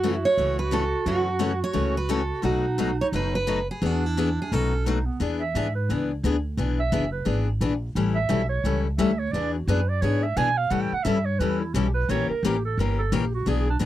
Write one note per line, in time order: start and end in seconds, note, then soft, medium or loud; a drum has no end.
0.00 0.23 F#2 medium
0.00 0.14 C#3 medium
0.00 0.14 E3 medium
0.00 0.14 A3 medium
0.00 0.14 C#4 medium
0.00 0.16 F#4 medium
0.00 2.46 F#4 loud
0.05 0.15 F#4 medium
0.16 0.27 E4 medium
0.25 0.57 C#5 loud
0.37 0.92 C#2 medium
0.37 0.59 C#3 medium
0.37 0.58 E3 medium
0.37 0.59 A3 medium
0.37 0.59 C#4 medium
0.37 0.59 F#4 medium
0.59 0.72 B4 medium
0.71 0.82 C#3 medium
0.71 0.83 E3 medium
0.71 0.83 A3 medium
0.71 0.83 C#4 medium
0.71 0.83 F#4 medium
0.71 1.07 A4 medium
1.06 1.61 F#2 medium
1.06 1.27 C#3 medium
1.06 1.27 E3 medium
1.06 1.27 A3 medium
1.06 1.27 C#4 medium
1.06 1.28 F#4 medium
1.06 1.59 F#4 medium
1.39 1.51 C#3 medium
1.39 1.51 E3 medium
1.39 1.51 A3 medium
1.39 1.52 C#4 medium
1.39 1.52 F#4 medium
1.64 1.95 C#5 medium
1.73 2.30 C#2 medium
1.73 1.95 C#3 medium
1.73 1.95 E3 medium
1.73 1.95 A3 medium
1.73 1.96 C#4 medium
1.73 1.96 F#4 medium
1.97 2.11 B4 medium
2.09 2.20 C#3 medium
2.09 2.20 E3 medium
2.09 2.21 A3 medium
2.09 2.21 C#4 loud
2.09 2.21 F#4 medium
2.09 2.42 A4 medium
2.42 2.99 B1 medium
2.42 2.64 B2 medium
2.42 2.64 F#3 medium
2.42 2.64 A3 medium
2.42 2.65 D#4 medium
2.42 3.56 D#4 loud
2.42 2.65 F#4 medium
2.42 2.96 F#4 medium
2.78 2.89 B2 medium
2.78 2.90 F#3 medium
2.78 2.90 A3 medium
2.78 2.90 D#4 medium
2.78 2.90 F#4 medium
3.01 3.06 C#5 medium
3.12 3.68 F#1 medium
3.12 3.34 B2 medium
3.12 3.34 F#3 medium
3.12 3.34 A3 medium
3.12 3.34 D#4 medium
3.12 3.34 F#4 medium
3.12 3.34 B4 medium
3.35 3.67 B4 medium
3.47 3.58 B2 medium
3.47 3.58 F#3 medium
3.47 3.58 A3 medium
3.47 3.59 D#4 medium
3.47 3.59 F#4 medium
3.71 3.86 G#4 medium
3.82 4.37 E2 medium
3.82 4.03 E3 medium
3.82 4.03 B3 medium
3.82 4.03 D4 medium
3.82 4.54 D4 medium
3.82 4.06 F#4 medium
3.82 4.03 G#4 medium
4.06 4.40 E4 medium
4.17 4.28 E3 medium
4.17 4.28 B3 medium
4.17 4.29 D4 medium
4.17 4.29 G#4 medium
4.42 4.53 G#4 medium
4.52 5.07 B1 medium
4.52 4.72 B2 medium
4.52 4.73 F#3 medium
4.52 4.73 A3 medium
4.52 4.87 C#4 medium
4.52 4.73 D#4 medium
4.52 4.73 F#4 medium
4.52 4.87 A4 medium
4.85 4.97 B2 medium
4.85 4.97 F#3 medium
4.85 4.98 A3 medium
4.85 5.07 D#4 medium
4.85 4.98 D#4 medium
4.85 4.98 F#4 medium
5.06 5.20 B3 medium
5.20 5.54 E2 medium
5.20 5.41 E3 medium
5.20 5.41 B3 medium
5.20 5.41 D4 medium
5.20 5.42 G#4 medium
5.41 5.73 E5 medium
5.55 5.88 G#2 medium
5.55 5.66 E3 medium
5.55 5.66 B3 medium
5.55 5.66 D4 medium
5.55 5.67 G#4 medium
5.75 6.07 B4 medium
5.89 6.23 C#2 medium
5.89 6.10 E3 medium
5.89 6.11 B3 medium
5.89 6.11 D4 medium
5.89 6.11 G#4 medium
6.23 6.57 D2 medium
6.23 6.35 E3 medium
6.23 6.35 B3 medium
6.23 6.35 D4 loud
6.23 6.36 G#4 medium
6.57 6.91 B1 medium
6.57 6.79 E3 medium
6.57 6.79 B3 medium
6.57 6.79 D4 medium
6.57 6.80 G#4 medium
6.80 7.12 E5 loud
6.92 7.25 F#1 medium
6.92 7.03 E3 medium
6.92 7.03 B3 medium
6.92 7.04 D4 medium
6.92 7.04 G#4 medium
7.12 7.45 B4 medium
7.25 7.60 G#1 medium
7.25 7.47 E3 medium
7.25 7.47 B3 medium
7.25 7.47 D4 medium
7.25 7.47 G#4 medium
7.61 7.94 A#1 medium
7.61 7.72 E3 medium
7.61 7.72 B3 medium
7.61 7.73 D4 medium
7.61 7.73 G#4 medium
7.95 8.29 A1 medium
7.95 8.17 E3 medium
7.95 8.17 G3 medium
7.95 8.17 C#4 medium
7.95 8.17 E4 medium
7.95 8.17 A4 medium
8.15 8.48 E5 loud
8.29 8.63 B1 medium
8.29 8.41 E3 medium
8.29 8.41 G3 medium
8.29 8.41 C#4 medium
8.29 8.41 E4 medium
8.29 8.41 A4 medium
8.49 8.82 C#5 medium
8.64 8.98 C#2 medium
8.64 8.86 E3 medium
8.64 8.86 G3 medium
8.64 8.86 C#4 medium
8.64 8.86 E4 medium
8.64 8.86 A4 medium
8.98 9.32 D2 medium
8.98 9.10 E3 medium
8.98 9.10 G3 medium
8.98 9.10 C#4 medium
8.98 9.10 E4 medium
8.98 9.11 A4 loud
8.98 9.20 E5 medium
9.19 9.34 C#5 medium
9.32 9.67 E2 medium
9.32 9.55 E3 medium
9.32 9.55 B3 medium
9.32 9.55 D4 medium
9.32 9.55 G#4 medium
9.32 9.53 D5 medium
9.54 9.70 F#4 soft
9.67 10.01 F#2 medium
9.67 9.79 E3 medium
9.67 9.79 B3 medium
9.67 9.80 D4 medium
9.67 9.80 G#4 loud
9.67 9.91 B4 medium
9.89 10.03 D5 medium
10.02 10.36 G#2 medium
10.02 10.23 E3 medium
10.02 10.23 B3 medium
10.02 10.24 D4 medium
10.02 10.24 G#4 medium
10.02 10.25 C#5 medium
10.23 10.39 E5 medium
10.37 10.70 B2 medium
10.37 10.48 E3 medium
10.37 10.48 B3 medium
10.37 10.48 D4 medium
10.37 10.48 G#4 medium
10.37 10.59 G#5 loud
10.57 10.73 F5 loud
10.70 10.91 A2 medium
10.70 10.92 E3 medium
10.70 10.92 G3 medium
10.70 10.92 C#4 medium
10.70 10.92 E4 medium
10.70 10.92 A4 medium
10.70 10.83 F#5 medium
10.81 10.96 G5 medium
10.92 11.05 F#5 medium
10.92 muted upright bass stroke soft
11.04 11.39 G2 medium
11.04 11.16 E3 medium
11.04 11.17 G3 medium
11.04 11.17 C#4 medium
11.04 11.17 E4 medium
11.04 11.17 A4 medium
11.04 11.27 E5 medium
11.25 11.41 C#5 medium
11.39 11.73 E2 medium
11.39 11.61 E3 medium
11.39 11.61 G3 medium
11.39 11.62 C#4 medium
11.39 11.62 E4 medium
11.39 11.62 A4 medium
11.39 11.61 B4 medium
11.60 11.75 E4 medium
11.74 12.08 B1 medium
11.74 11.86 E3 medium
11.74 11.86 G3 medium
11.74 11.86 C#4 medium
11.74 11.86 E4 medium
11.74 11.94 G4 medium
11.74 11.87 A4 medium
11.94 12.12 B4 medium
12.09 12.28 A#1 medium
12.09 12.30 E3 medium
12.09 12.30 A#3 medium
12.09 12.30 C#4 medium
12.09 12.31 G4 medium
12.09 12.31 A#4 medium
12.09 12.29 C#5 loud
12.30 12.47 A#4 medium
12.30 muted upright bass stroke soft
12.43 12.77 A1 medium
12.43 12.55 E3 medium
12.43 12.55 A#3 medium
12.43 12.55 C#4 medium
12.43 12.65 G4 medium
12.43 12.56 G4 medium
12.43 12.56 A#4 medium
12.65 12.81 A4 medium
12.78 13.11 G1 medium
12.78 12.99 E3 medium
12.78 13.00 A#3 medium
12.78 13.00 C#4 medium
12.78 13.00 G4 medium
12.78 12.98 A#4 medium
12.78 13.00 A#4 medium
12.99 13.15 A4 medium
13.12 13.46 A#1 medium
13.12 13.23 E3 medium
13.12 13.24 A#3 medium
13.12 13.24 C#4 medium
13.12 13.24 G4 loud
13.12 13.34 G4 medium
13.12 13.24 A#4 loud
13.35 13.50 F#4 medium
13.46 13.80 B1 medium
13.46 13.67 E3 medium
13.46 13.68 B3 medium
13.46 13.68 D4 medium
13.46 13.68 G#4 medium
13.46 13.69 G#4 medium
13.70 13.77 D4 medium
13.79 13.86 C#2 medium
13.79 13.86 E3 medium
13.79 13.86 B3 medium
13.79 13.86 D4 loud
13.79 13.86 G#4 medium